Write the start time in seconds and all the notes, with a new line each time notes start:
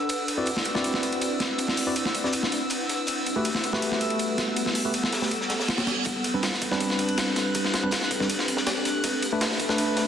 Already playing: D4 B4 F#5 E6
0.09 C4 E4, closed hi-hat, ride
0.28 closed hi-hat, ride
0.38 C4 E4 F#4 B4 D5
0.46 open hi-hat, ride
0.57 snare
0.65 closed hi-hat, ride
0.75 C4 E4 F#4 B4 D5, snare
0.84 closed hi-hat, ride
0.94 snare
1.03 closed hi-hat, ride
1.12 ride
1.21 closed hi-hat, ride
1.40 snare, closed hi-hat, ride
1.58 closed hi-hat, ride
1.68 snare
1.77 closed hi-hat, open hi-hat
1.87 C4 E4 F#4 B4 D5
1.96 closed hi-hat, ride
2.06 snare, closed hi-hat
2.15 closed hi-hat, ride
2.24 C4 E4 F#4 B4 D5, snare
2.33 closed hi-hat, ride
2.43 snare
2.52 closed hi-hat, ride
2.70 closed hi-hat, ride
2.89 snare, closed hi-hat, ride
3.07 G3 B3 A4, closed hi-hat, ride
3.26 closed hi-hat, ride
3.36 A3 F#4 G4 B4
3.45 open hi-hat, ride
3.55 snare
3.64 closed hi-hat, ride
3.73 A3 F#4 G4 B4, snare
3.82 closed hi-hat, ride
3.92 snare
4.01 closed hi-hat, ride
4.10 ride
4.19 closed hi-hat, ride
4.38 snare, closed hi-hat, ride
4.56 closed hi-hat, ride
4.66 snare
4.75 closed hi-hat, open hi-hat
4.85 A3 F#4 G4 B4
4.94 closed hi-hat, ride
5.04 snare, closed hi-hat
5.12 snare, open hi-hat, ride
5.22 A3 F#4 G4 B4, snare, open hi-hat
5.31 closed hi-hat, ride, reverse cymbal
5.41 snare
5.49 snare, open hi-hat, ride
5.60 snare, open hi-hat
5.69 snare, ride
5.78 snare, open hi-hat, ride
5.87 snare, closed hi-hat, ride
6.05 C4 D4 G4 A4 B4 F#6, kick, closed hi-hat, ride, riser
6.24 closed hi-hat, ride
6.34 G3 C4 D4 B4
6.43 snare, open hi-hat, ride
6.53 snare
6.62 kick, closed hi-hat, ride
6.71 G3 C4 D4 B4, snare
6.80 kick, closed hi-hat, ride
6.90 snare
6.99 kick, closed hi-hat, ride
7.09 ride
7.18 snare, closed hi-hat, ride
7.36 snare, closed hi-hat, ride
7.55 kick, closed hi-hat, ride
7.65 snare
7.73 snare, closed hi-hat, ride
7.83 G3 C4 D4 B4, kick
7.91 snare, closed hi-hat, ride
8.01 snare, closed hi-hat
8.11 kick, closed hi-hat, ride
8.20 G3 C4 D4 B4, kick, snare
8.30 closed hi-hat, ride
8.39 snare
8.48 closed hi-hat, ride
8.57 snare
8.66 snare, closed hi-hat, ride
8.85 snare, closed hi-hat, ride
9.04 D4 F#4, kick, closed hi-hat, ride
9.22 closed hi-hat, ride
9.32 A3 D4 B4
9.41 snare, open hi-hat, ride
9.51 snare
9.59 kick, closed hi-hat, ride
9.69 A3 D4 B4, snare
9.78 kick, closed hi-hat, ride
9.97 kick, snare, open hi-hat, ride